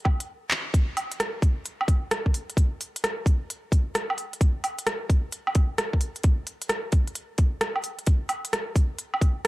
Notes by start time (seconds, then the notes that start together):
0.05 kick, low woodblock
0.20 closed hi-hat
0.51 clap
0.74 kick, closed hi-hat
0.97 open hi-hat, low woodblock
1.12 closed hi-hat
1.20 cross-stick, closed hi-hat
1.42 kick, open hi-hat
1.66 closed hi-hat
1.81 low woodblock
1.88 kick, open hi-hat
2.11 cross-stick, closed hi-hat
2.26 kick
2.34 open hi-hat
2.50 closed hi-hat
2.57 kick, closed hi-hat
2.81 open hi-hat
2.96 closed hi-hat
3.04 cross-stick, closed hi-hat
3.26 kick, open hi-hat
3.50 closed hi-hat
3.72 kick, open hi-hat
3.95 cross-stick, closed hi-hat
4.10 low woodblock
4.18 open hi-hat
4.33 closed hi-hat
4.41 kick, closed hi-hat
4.64 open hi-hat, low woodblock
4.79 closed hi-hat
4.87 cross-stick, closed hi-hat
5.10 kick, open hi-hat
5.32 closed hi-hat
5.47 low woodblock
5.55 kick, open hi-hat
5.78 cross-stick, closed hi-hat
5.93 kick
6.01 open hi-hat
6.16 closed hi-hat
6.23 kick, closed hi-hat
6.47 open hi-hat
6.62 closed hi-hat
6.69 cross-stick, closed hi-hat
6.92 kick, open hi-hat
7.07 closed hi-hat
7.15 closed hi-hat
7.38 kick, open hi-hat
7.61 cross-stick, closed hi-hat
7.76 low woodblock
7.84 open hi-hat
7.99 closed hi-hat
8.07 kick, closed hi-hat
8.29 open hi-hat, low woodblock
8.45 closed hi-hat
8.53 cross-stick, closed hi-hat
8.76 kick, open hi-hat
8.99 closed hi-hat
9.14 low woodblock
9.21 kick, open hi-hat